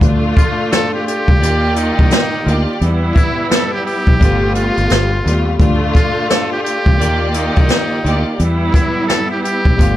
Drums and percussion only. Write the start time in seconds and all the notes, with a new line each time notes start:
0.01 kick, closed hi-hat
0.37 kick, closed hi-hat
0.72 snare, closed hi-hat
1.08 closed hi-hat
1.28 kick
1.43 closed hi-hat
1.76 closed hi-hat
1.99 kick
2.11 snare, closed hi-hat
2.48 closed hi-hat
2.81 closed hi-hat
3.16 kick, closed hi-hat
3.51 snare, closed hi-hat
3.87 open hi-hat
4.07 kick
4.21 kick, closed hi-hat
4.55 closed hi-hat
4.77 closed hi-hat
4.90 snare, closed hi-hat
5.27 closed hi-hat
5.60 kick, closed hi-hat
5.95 kick, closed hi-hat
6.30 snare, closed hi-hat
6.66 closed hi-hat
6.86 kick
7.01 closed hi-hat
7.34 closed hi-hat
7.56 kick, closed hi-hat
7.69 snare, closed hi-hat
8.06 closed hi-hat
8.39 closed hi-hat
8.74 kick, closed hi-hat
9.09 snare, closed hi-hat
9.45 closed hi-hat
9.65 kick
9.79 kick, closed hi-hat